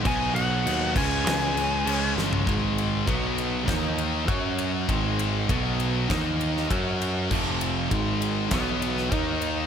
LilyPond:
<<
  \new Staff \with { instrumentName = "Lead electric guitar" } { \time 4/4 \key gis \dorian \tempo 4 = 99 gis''8 fis''4 gis''2 r8 | r1 | r1 | r1 | }
  \new Staff \with { instrumentName = "Distorted electric guitar" } { \clef bass \time 4/4 \key gis \dorian <b, fis b>4. <cis gis cis'>4. <cis gis cis'>4 | <gis, dis gis>4 <b, fis b>4 <dis ais dis'>4 <fis cis' fis'>4 | <gis, dis gis>4 <b, fis b>4 <dis ais dis'>4 <fis cis' fis'>4 | <f, c f>4 <gis, dis gis>4 <b, fis b>4 <dis ais dis'>4 | }
  \new Staff \with { instrumentName = "Distorted electric guitar" } { \clef bass \time 4/4 \key gis \dorian <b, fis b dis'>4. <cis eis gis cis'>4. <cis eis gis cis'>4 | <gis, dis gis>4 <b, fis b>4 <dis ais dis'>4 <fis cis' fis'>4 | <gis, dis gis>4 <b, fis b>4 <dis ais dis'>4 <fis cis' fis'>4 | <f, c f>4 <gis, dis gis>4 <b, fis b>4 <dis ais dis'>4 | }
  \new Staff \with { instrumentName = "Overdriven electric guitar" } { \clef bass \time 4/4 \key gis \dorian <b, fis b>4. <cis gis cis'>2~ <cis gis cis'>8 | <gis, dis gis>4 <b, fis b>4 <dis ais dis'>4 <fis cis' fis'>4 | <gis, dis gis>4 <b, fis b>4 <dis ais dis'>4 <fis cis' fis'>4 | <f, c f>4 <gis, dis gis>4 <b, fis b>4 <dis ais dis'>4 | }
  \new Staff \with { instrumentName = "Picked electric bass" } { \clef bass \time 4/4 \key gis \dorian b,,8 b,,8 dis,8 cis,8 cis,8 cis,8 cis,8 g,,8 | gis,,4 b,,4 dis,4 fis,4 | gis,,4 b,,4 dis,4 fis,4 | f,,4 gis,,4 b,,4 dis,4 | }
  \new DrumStaff \with { instrumentName = "Drums" } \drummode { \time 4/4 <cymc bd>8 cymc8 cymc8 <cymc bd>8 <cymc sn>8 cymc8 cymc8 sn16 tomfh16 | <bd cymr>8 cymr8 <bd cymr>8 cymr8 <bd cymr sn>8 cymr8 <bd cymr>8 cymr8 | <bd cymr>8 cymr8 <bd cymr>8 cymr8 <bd cymr sn>8 cymr16 sn16 <bd cymr>8 cymr8 | <cymc bd>8 cymr8 <bd cymr>8 cymr8 <bd cymr sn>8 cymr16 sn16 <bd cymr>8 cymr8 | }
>>